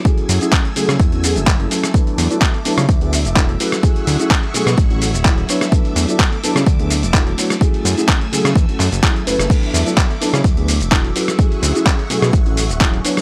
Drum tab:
CC |----------------|----------------|----------------|----------------|
HH |xxoxxxoxxxoxxxox|xxoxxxoxxxoxxxox|xxoxxxoxxxoxxxox|xxoxxxoxxxoxxxox|
SH |x-xxx-xxx-xxx-xx|x-xxx-xxx-xxx-xx|x-xxx-xxx-xxx-xx|x-xxx-xxx-xxx-xx|
CP |----x-------x---|----x-------x---|----x-------x---|----x-------x---|
SD |-------r-------r|-------r-------r|-------r-------r|-------r-------r|
BD |o---o---o---o---|o---o---o---o---|o---o---o---o---|o---o---o---o---|

CC |----------------|x---------------|----------------|
HH |xxoxxxoxxxoxxxox|xxoxxxoxxxoxxxox|xxoxxxoxxxoxxxox|
SH |x-xxx-xxx-xxx-xx|x-xxx-xxx-xxx-xx|x-xxx-xxx-xxx-xx|
CP |----x-----x-x---|----x-------x---|----x-------x---|
SD |-------r-------r|-------r-------r|-------r-------r|
BD |o---o---o---o---|o---o---o---o---|o---o---o---o---|